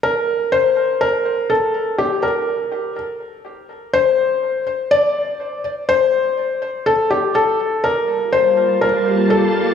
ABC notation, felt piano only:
X:1
M:4/4
L:1/8
Q:1/4=123
K:Gm
V:1 name="Felt piano"
B2 c2 B2 A2 | G B3 z4 | c3 z d3 z | c4 A G A2 |
B2 c2 B2 A2 |]